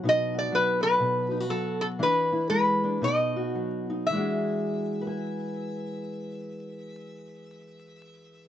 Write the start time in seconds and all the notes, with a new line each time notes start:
Already playing: F#3
0.03 B2 D#4
0.09 D#5
0.34 F#4
0.39 D5
0.52 F#3 B4
0.82 D#4 B4
1.00 B2
1.31 D#4
1.40 F#4
1.50 F#3 A4
1.81 A4
1.99 E3 D4 B4
2.32 E4
2.50 G#3 B4
2.84 D4
3.02 B2 D#4 D#5
3.36 F#4
3.55 F#3
3.90 D#4
4.07 E3 E5
4.12 G#3 D4
4.16 F#4 G#4
5.01 B4
5.07 G#5